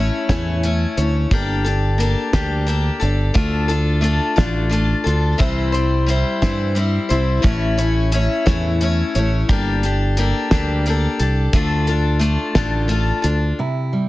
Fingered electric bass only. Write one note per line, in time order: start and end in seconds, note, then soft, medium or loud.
0.29 0.84 E2 medium
0.97 1.25 D2 medium
1.31 2.14 G1 loud
2.34 2.89 D2 medium
3.02 3.29 G1 medium
3.36 4.18 D2 medium
4.38 4.93 A1 loud
5.06 5.34 D2 medium
5.40 6.23 C2 medium
6.42 6.97 G2 loud
7.11 7.38 C2 medium
7.44 8.27 A1 medium
8.47 9.02 E2 medium
9.16 9.43 A1 medium
9.49 10.32 G1 medium
10.51 11.06 D2 medium
11.20 11.47 C2 medium
11.53 12.36 D2 medium
12.55 13.11 A1 medium
13.24 13.52 D2 medium